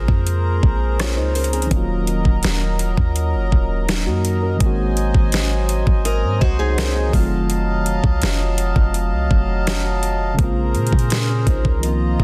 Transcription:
0.00 0.92 C#3 medium
0.00 0.94 G#3 medium
0.00 0.95 A#3 medium
0.00 0.96 C4 medium
0.00 0.97 F4 medium
0.00 1.68 G#4 medium
0.00 4.56 A#4 medium
0.00 1.68 C5 medium
0.00 4.56 A#5 medium
0.08 0.61 F2 loud
0.08 kick loud
0.27 closed hi-hat medium
0.63 1.19 A#1 loud
0.63 kick medium
0.99 1.17 F4 medium
0.99 1.16 C#5 medium
0.99 cross-stick loud
0.99 snare loud
0.99 closed hi-hat medium
1.17 1.69 C#2 loud
1.17 1.34 D#4 medium
1.17 1.34 C5 medium
1.35 1.53 C#4 medium
1.35 1.52 A#4 medium
1.35 closed hi-hat soft
1.35 open hi-hat medium
1.44 closed hi-hat soft
1.53 1.88 C4 medium
1.53 1.87 G#4 medium
1.53 closed hi-hat medium
1.62 closed hi-hat medium
1.66 4.54 D#3 medium
1.66 1.76 F3 medium
1.71 2.23 D#1 loud
1.71 3.84 A#3 medium
1.71 3.85 C#4 medium
1.71 10.35 D#5 medium
1.71 kick loud
1.71 closed hi-hat medium
1.75 3.86 F#3 medium
1.75 3.87 F4 medium
2.07 closed hi-hat medium
2.25 2.43 D#1 loud
2.25 kick medium
2.43 2.96 D#1 loud
2.43 snare loud
2.43 closed hi-hat medium
2.79 closed hi-hat medium
2.97 3.36 D#2 loud
2.97 kick loud
3.16 closed hi-hat medium
3.35 3.51 F#1 loud
3.52 4.08 D#1 loud
3.52 kick medium
3.88 4.06 F#3 medium
3.88 4.05 D#4 medium
3.88 snare loud
3.88 closed hi-hat medium
4.06 4.58 F#2 loud
4.06 4.41 A#3 medium
4.06 4.41 F#4 medium
4.25 closed hi-hat medium
4.43 4.77 C#4 medium
4.43 4.77 A#4 medium
4.56 7.07 D#3 medium
4.56 7.08 G#3 medium
4.60 5.13 G#1 loud
4.60 10.35 F#3 medium
4.60 7.10 A#3 medium
4.60 6.39 C4 medium
4.60 7.11 C5 medium
4.60 7.11 G#5 medium
4.60 kick loud
4.60 closed hi-hat medium
4.66 6.40 F#4 medium
4.97 closed hi-hat medium
5.14 5.84 G#1 loud
5.14 kick medium
5.32 snare loud
5.32 closed hi-hat medium
5.69 closed hi-hat medium
5.87 6.25 G#1 loud
5.87 kick loud
6.05 6.40 A#4 medium
6.05 6.39 D#5 medium
6.05 closed hi-hat medium
6.24 6.41 G#2 loud
6.41 7.11 C2 loud
6.41 6.59 F#4 medium
6.41 6.58 C5 medium
6.41 6.58 D#5 medium
6.41 kick medium
6.59 7.11 D#4 medium
6.59 6.77 D#4 medium
6.59 7.11 G#4 medium
6.59 6.77 C5 medium
6.78 6.95 A#4 medium
6.78 snare loud
6.78 closed hi-hat medium
6.95 7.15 C4 medium
6.95 7.30 G#4 medium
7.09 9.96 D#3 medium
7.09 9.97 F#3 medium
7.13 8.00 F1 loud
7.13 9.99 A3 medium
7.13 10.00 C4 medium
7.13 10.35 F5 medium
7.13 10.35 A5 medium
7.13 kick loud
7.13 open hi-hat medium
7.19 10.01 F4 medium
7.50 closed hi-hat medium
7.86 closed hi-hat medium
8.04 8.21 C2 loud
8.04 kick medium
8.22 8.74 F1 loud
8.22 snare loud
8.22 closed hi-hat medium
8.58 closed hi-hat medium
8.76 9.14 F1 loud
8.76 kick loud
8.94 closed hi-hat medium
9.12 9.30 C2 loud
9.31 10.35 F1 loud
9.31 kick medium
9.67 snare loud
9.67 closed hi-hat medium
10.03 closed hi-hat medium
10.34 11.78 C#3 medium
10.34 11.79 G#3 medium
10.38 10.76 A#1 loud
10.38 11.81 A#3 medium
10.38 10.76 C4 medium
10.38 11.82 G#4 medium
10.38 11.82 A#4 medium
10.38 11.82 C5 medium
10.38 12.24 A#5 medium
10.38 kick loud
10.38 closed hi-hat medium
10.44 10.77 F4 medium
10.75 10.92 A#2 loud
10.75 closed hi-hat soft
10.87 closed hi-hat soft
10.93 11.45 A#2 loud
10.93 kick medium
10.99 closed hi-hat medium
11.10 snare loud
11.10 closed hi-hat medium
11.29 11.47 C#4 medium
11.29 11.46 A#4 medium
11.47 11.64 A#1 loud
11.47 11.65 D#4 medium
11.47 11.64 C5 medium
11.47 kick medium
11.47 closed hi-hat medium
11.65 12.17 C2 loud
11.65 12.00 C#4 medium
11.65 12.00 A#4 medium
11.65 kick loud
11.78 12.24 D#3 medium
11.78 12.24 F3 medium
11.83 12.24 A#3 medium
11.83 12.24 C4 medium
11.83 12.24 F4 medium
11.83 12.24 C5 medium
11.83 12.24 D#5 medium
11.83 closed hi-hat medium
11.88 12.24 F4 medium
12.20 12.24 F1 loud
12.20 kick medium

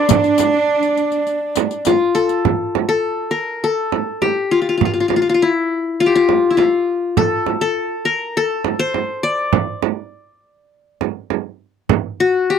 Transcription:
0.00 1.86 D4 loud
0.00 0.47 A#4 medium
0.00 0.54 C5 medium
0.00 1.81 D5 medium
0.00 1.87 D5 medium
0.09 riq medium
0.09 frame drum medium
0.24 riq soft
0.38 riq soft
0.38 frame drum medium
0.83 riq soft
0.97 riq soft
1.12 riq soft
1.27 riq soft
1.56 riq soft
1.56 frame drum medium
1.71 riq soft
1.85 3.22 F4 medium
1.85 riq soft
1.85 frame drum medium
2.14 2.88 A4 medium
2.14 riq soft
2.29 riq soft
2.45 frame drum medium
2.75 frame drum medium
2.89 3.37 A4 medium
3.31 3.70 A#4 medium
3.64 4.81 A4 medium
3.92 frame drum medium
4.22 5.47 G4 medium
4.22 frame drum medium
4.51 4.61 F4 medium
4.62 4.69 F4 soft
4.69 4.77 F4 medium
4.77 4.85 F4 soft
4.77 frame drum medium
4.85 4.93 F4 medium
4.94 5.00 F4 soft
5.00 5.08 F4 medium
5.08 5.16 F4 soft
5.08 frame drum medium
5.16 5.21 F4 medium
5.22 5.29 F4 medium
5.29 5.34 F4 medium
5.34 5.48 F4 medium
5.42 6.06 E4 medium
6.00 6.15 F4 medium
6.06 7.32 G4 medium
6.15 6.57 F4 medium
6.29 frame drum medium
6.50 6.63 E4 medium
6.57 7.92 F4 medium
6.57 frame drum medium
7.17 7.61 A4 medium
7.17 frame drum medium
7.46 frame drum medium
7.61 8.11 A4 medium
8.05 8.43 A#4 medium
8.37 9.54 A4 medium
8.65 frame drum medium
8.79 9.85 C5 medium
8.94 frame drum medium
9.23 11.26 D5 medium
9.53 frame drum medium
9.83 frame drum medium
11.01 frame drum medium
11.30 frame drum medium
11.89 frame drum medium
12.20 12.56 F#4 medium
12.50 12.59 G4 medium

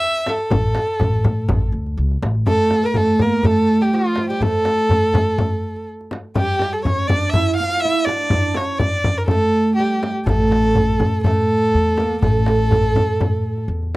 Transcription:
0.00 0.31 E5 loud
0.00 darbuka ka soft
0.14 darbuka ka soft
0.26 1.66 A4 medium
0.26 darbuka tek medium
0.26 frame drum medium
0.38 darbuka ka soft
0.51 0.74 A1 medium
0.51 darbuka dum medium
0.51 frame drum medium
0.63 darbuka ka soft
0.75 darbuka tek medium
0.75 frame drum medium
0.87 darbuka ka soft
1.00 1.23 A1 medium
1.00 darbuka dum medium
1.00 frame drum medium
1.24 1.48 A2 medium
1.24 frame drum medium
1.48 1.72 A1 medium
1.48 frame drum medium
1.48 darbuka dum loud
1.72 1.95 D2 medium
1.72 darbuka ka soft
1.86 darbuka ka soft
1.97 2.20 C#2 medium
1.97 darbuka ka soft
2.11 darbuka ka soft
2.22 2.44 A1 medium
2.22 darbuka tek medium
2.22 frame drum medium
2.35 darbuka ka soft
2.47 2.81 A3 medium
2.47 2.87 A4 loud
2.47 frame drum medium
2.47 darbuka dum medium
2.71 darbuka tek medium
2.71 frame drum medium
2.83 2.96 A#3 medium
2.83 2.98 A#4 medium
2.83 darbuka ka soft
2.94 3.21 A3 medium
2.94 3.23 A4 medium
2.94 darbuka dum medium
2.94 frame drum medium
3.19 3.44 A#3 medium
3.19 3.47 A#4 medium
3.19 frame drum medium
3.43 3.80 A3 medium
3.43 3.83 A4 medium
3.43 darbuka dum medium
3.43 frame drum medium
3.68 darbuka ka soft
3.79 3.93 G3 medium
3.79 3.96 G4 medium
3.79 darbuka ka soft
3.93 4.31 F3 medium
3.93 4.29 F4 medium
4.04 darbuka ka soft
4.16 darbuka tek medium
4.16 frame drum medium
4.30 4.41 G3 medium
4.30 4.44 G4 medium
4.40 5.84 A3 medium
4.40 5.88 A4 loud
4.40 darbuka dum medium
4.40 frame drum medium
4.65 darbuka tek medium
4.65 frame drum medium
4.78 darbuka ka soft
4.89 darbuka dum medium
4.89 frame drum medium
5.14 darbuka dum medium
5.14 frame drum medium
5.38 frame drum medium
5.38 darbuka dum medium
5.63 darbuka ka soft
5.76 darbuka ka soft
6.01 darbuka ka soft
6.11 darbuka tek medium
6.11 frame drum medium
6.35 6.87 G3 medium
6.35 6.74 G4 medium
6.35 frame drum medium
6.35 darbuka dum medium
6.59 darbuka tek medium
6.59 frame drum medium
6.73 6.84 A4 medium
6.73 darbuka ka soft
6.85 7.08 C#4 medium
6.85 7.08 C#5 medium
6.85 frame drum medium
6.85 darbuka dum medium
7.07 7.35 D4 medium
7.07 7.31 D5 medium
7.07 frame drum medium
7.07 darbuka dum medium
7.30 7.56 E5 medium
7.30 frame drum medium
7.35 7.60 E4 medium
7.35 darbuka dum medium
7.56 7.85 F4 medium
7.56 7.82 F5 medium
7.73 darbuka ka soft
7.80 8.06 E5 loud
7.85 8.09 E4 medium
7.97 darbuka ka soft
8.05 8.57 D5 medium
8.05 darbuka tek medium
8.05 frame drum medium
8.10 8.32 D4 medium
8.30 8.56 D4 medium
8.30 frame drum medium
8.34 darbuka dum medium
8.54 8.80 C#4 medium
8.54 8.80 C#5 medium
8.54 darbuka tek medium
8.54 frame drum medium
8.79 9.31 D4 medium
8.79 9.19 D5 medium
8.79 frame drum medium
8.79 darbuka dum medium
9.04 frame drum medium
9.04 darbuka dum medium
9.18 9.27 A#4 medium
9.27 9.79 A3 medium
9.27 9.74 A4 medium
9.27 frame drum medium
9.27 darbuka dum medium
9.75 10.11 G4 medium
9.75 darbuka ka soft
9.80 10.13 G3 medium
10.03 darbuka tek medium
10.03 frame drum medium
10.16 darbuka ka soft
10.26 10.96 A1 medium
10.26 11.25 A3 medium
10.26 11.20 A4 medium
10.26 frame drum medium
10.26 darbuka dum medium
10.51 darbuka tek medium
10.51 frame drum medium
10.65 darbuka ka soft
10.75 frame drum medium
10.75 darbuka dum medium
11.00 11.69 A2 medium
11.00 frame drum medium
11.00 darbuka dum medium
11.24 11.99 A3 medium
11.24 12.18 A4 medium
11.24 frame drum medium
11.24 darbuka dum medium
11.51 darbuka ka soft
11.63 darbuka ka soft
11.74 12.20 E2 medium
11.86 darbuka ka soft
11.98 12.23 A#3 medium
11.98 frame drum medium
12.22 12.92 A1 medium
12.22 13.66 A3 medium
12.22 13.65 A4 medium
12.22 frame drum medium
12.22 darbuka dum medium
12.46 darbuka tek medium
12.46 frame drum medium
12.71 darbuka dum medium
12.71 frame drum medium
12.95 13.65 A2 medium
12.95 frame drum medium
12.95 darbuka dum medium
13.20 darbuka dum medium
13.20 frame drum medium
13.46 darbuka ka soft
13.58 darbuka ka soft
13.68 13.97 E2 medium
13.83 darbuka ka soft

